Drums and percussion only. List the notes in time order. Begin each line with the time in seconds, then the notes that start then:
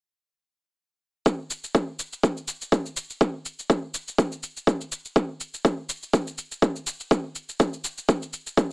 1.26 kick, cabasa
1.50 cabasa
1.64 cabasa
1.75 kick, cabasa
1.99 cabasa
2.13 cabasa
2.23 kick, cabasa
2.37 cabasa
2.48 cabasa
2.61 cabasa
2.72 kick, cabasa
2.86 cabasa
2.97 cabasa
3.10 cabasa
3.21 kick, cabasa
3.45 cabasa
3.59 cabasa
3.70 kick, cabasa
3.94 cabasa
4.08 cabasa
4.18 kick, cabasa
4.32 cabasa
4.43 cabasa
4.57 cabasa
4.67 kick, cabasa
4.81 cabasa
4.92 cabasa
5.05 cabasa
5.16 kick, cabasa
5.40 cabasa
5.54 cabasa
5.65 kick, cabasa
5.89 cabasa
6.03 cabasa
6.13 kick, cabasa
6.27 cabasa
6.38 cabasa
6.52 cabasa
6.62 kick, cabasa
6.76 cabasa
6.87 cabasa
7.00 cabasa
7.11 kick, cabasa
7.35 cabasa
7.49 cabasa
7.60 kick, cabasa
7.73 cabasa
7.84 cabasa
7.98 cabasa
8.09 kick, cabasa
8.22 cabasa
8.33 cabasa
8.47 cabasa
8.57 kick, cabasa